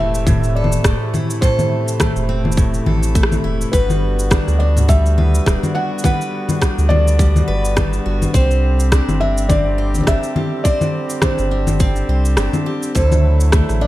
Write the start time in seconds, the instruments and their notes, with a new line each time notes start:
Already playing: sub bass E1, steel-string acoustic guitar A2 A3 A4, harmonium C3 E3 A3 E4, felt piano E5
0.00 steel-string acoustic guitar C4
0.15 cabasa
0.27 steel-string acoustic guitar A2, kick, low conga, cabasa
0.44 cabasa
0.55 steel-string acoustic guitar A4, felt piano D5
0.64 low conga
0.72 cabasa
0.84 sub bass E1, steel-string acoustic guitar A3, kick, cross-stick, cabasa
1.14 steel-string acoustic guitar E4, low conga, cabasa
1.30 cabasa
1.41 steel-string acoustic guitar A2 A4, felt piano C5, kick, cabasa
1.59 low conga, cabasa
1.88 cabasa
2.00 steel-string acoustic guitar A3, kick, cross-stick, low conga, cabasa
2.16 sub bass E1, cabasa
2.29 steel-string acoustic guitar C4
2.45 low conga
2.52 cabasa
2.57 steel-string acoustic guitar A2, kick, cabasa
2.74 cabasa
2.86 sub bass A1, steel-string acoustic guitar A4, low conga
3.03 cabasa
3.15 steel-string acoustic guitar A3, kick, cabasa
3.23 cross-stick
3.32 low conga, cabasa
3.44 sub bass E1, steel-string acoustic guitar E4
3.61 cabasa
3.72 sub bass G1, harmonium D3 G3 B3 F#4, steel-string acoustic guitar G3 B4, felt piano B4, kick, cabasa
3.90 low conga, cabasa
4.19 cabasa
4.31 steel-string acoustic guitar D4, kick, cross-stick, low conga, cabasa
4.48 sub bass D2, cross-stick, cabasa
4.59 steel-string acoustic guitar D4, felt piano D5
4.77 low conga, cabasa
4.88 steel-string acoustic guitar G3, felt piano E5, kick, cabasa
5.06 cabasa
5.18 steel-string acoustic guitar B4, low conga
5.35 cabasa
5.46 sub bass D1, steel-string acoustic guitar D4, kick, cross-stick, cabasa
5.63 low conga, cabasa
5.75 steel-string acoustic guitar F#4, felt piano F#5
5.99 cabasa
6.04 steel-string acoustic guitar G3 B4, felt piano F#5, kick, low conga, cabasa
6.21 cabasa
6.49 low conga, cabasa
6.61 steel-string acoustic guitar D4, kick, cross-stick, cabasa
6.78 sub bass D2, cabasa
6.89 steel-string acoustic guitar D4, felt piano D5, low conga
7.08 cabasa
7.19 steel-string acoustic guitar G3, kick, cabasa
7.36 low conga, cabasa
7.48 sub bass G1, steel-string acoustic guitar B4
7.65 cabasa
7.76 steel-string acoustic guitar D4, kick, cross-stick, low conga, cabasa
7.93 cabasa
8.06 sub bass G1, steel-string acoustic guitar F#4
8.22 low conga, cabasa
8.33 sub bass C2, harmonium G3 C4 G4, steel-string acoustic guitar C4 C5, felt piano C5, kick, cabasa
8.51 cabasa
8.80 cabasa
8.92 steel-string acoustic guitar D4, kick, cross-stick, cabasa
9.08 sub bass G1, cross-stick, low conga, cabasa
9.20 steel-string acoustic guitar D4, felt piano E5
9.38 cabasa
9.49 steel-string acoustic guitar C4, felt piano D5, kick, low conga, cabasa
9.78 steel-string acoustic guitar C5
9.94 low conga, cabasa
9.98 low conga
10.01 low conga
10.04 sub bass G1, steel-string acoustic guitar D4, kick, cross-stick, low conga, cabasa
10.08 felt piano E5
10.23 cabasa
10.36 steel-string acoustic guitar G4, low conga
10.64 steel-string acoustic guitar C4 C5, felt piano D5, kick, cabasa
10.81 low conga, cabasa
11.10 cabasa
11.22 steel-string acoustic guitar D4, felt piano C5, kick, cross-stick, low conga, cabasa
11.38 sub bass G1, cross-stick, cabasa
11.51 steel-string acoustic guitar D4
11.67 low conga, cabasa
11.80 steel-string acoustic guitar C4, kick, cabasa
11.96 cabasa
12.08 sub bass C2, steel-string acoustic guitar C5
12.25 cabasa
12.37 sub bass G1, steel-string acoustic guitar D4, cross-stick, cabasa
12.53 low conga, cabasa
12.66 steel-string acoustic guitar G4
12.83 cabasa
12.95 sub bass D2, steel-string acoustic guitar D3 A4, harmonium D3 F#3 A3 E4, felt piano C5, kick, cabasa
13.12 low conga, cabasa
13.40 cabasa
13.52 steel-string acoustic guitar A3, kick, cross-stick, low conga, cabasa
13.69 sub bass A1, cross-stick, cabasa
13.81 steel-string acoustic guitar D4, felt piano D5